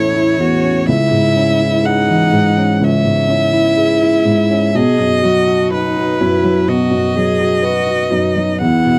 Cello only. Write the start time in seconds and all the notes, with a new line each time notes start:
Already playing: E4
0.40 F#4
0.86 E4
1.84 D#4
2.82 C#4
3.30 E4
4.75 G#4
5.23 F#4
5.72 D#4
6.21 E4
6.69 F#4
7.17 G#4
7.65 F#4
8.12 D#4
8.62 E4